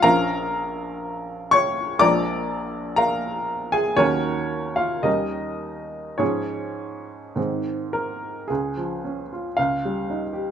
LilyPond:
<<
  \new Staff \with { instrumentName = "Upright piano" } { \time 2/4 \key des \major \tempo 4 = 58 <bes' f'' bes''>4. <des'' des'''>8 | <d'' bes'' d'''>4 <bes' f'' bes''>8. <aes' aes''>16 | <des' bes' des''>8. <f' f''>16 <ees' bes' ees''>4 | <des' aes' des''>4 r8 bes'8 |
aes'4 f''4 | }
  \new Staff \with { instrumentName = "Upright piano" } { \clef bass \time 2/4 \key des \major <bes,, f des'>2 | <bes,, f aes bes>2 | <ees, ees ges bes>4 <ees, ees g des'>4 | <aes, f aes>4 <aes, ees aes c'>4 |
des,16 f16 des'16 f'16 des,16 g16 ees'16 g'16 | }
>>